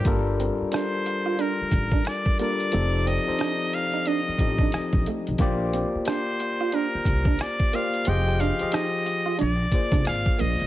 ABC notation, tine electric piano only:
X:1
M:4/4
L:1/16
Q:"Swing 16ths" 1/4=90
K:Fmix
V:1 name="Tine electric piano"
[G,DFAB]6- [G,DFAB] z6 z [G,DFAB]2 | [F,CEGAd]3 [F,CEGAc]6 z [F,CEGAe]4- [F,CEGAe] z | [B,FGcd]6- [B,FGcd] z6 z [B,FGcd]2 | [F,FG_Ae]3 [F,FGAe]4- [F,FGAe] z2 [B,FAcd]4- [B,FAcd] z |]